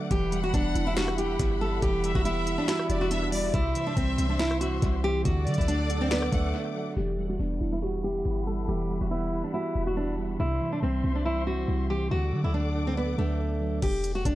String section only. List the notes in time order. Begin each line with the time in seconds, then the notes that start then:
Already playing: F#5
0.11 G3 E5 B5
3.54 C5 C6
5.25 A4 D5 F#5 D6
6.97 G3 E5 F#5 B5
10.40 C5 E5 C6
12.11 A4 D5 F#5 D6